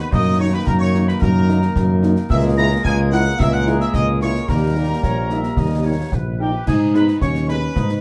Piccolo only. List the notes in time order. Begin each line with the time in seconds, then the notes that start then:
0.00 B5
0.13 D#6
0.40 C#6
0.54 B5
0.68 A#5
0.80 C#6
1.08 B5
1.21 A#5
2.30 E6
2.58 A#6
2.85 G#6
3.13 F#6
3.41 E6
3.54 F#6
3.81 E6
3.95 D#6
4.22 C#6
4.49 A#5
6.40 G5
6.68 G#5
6.95 B5
7.21 C#6
7.49 B5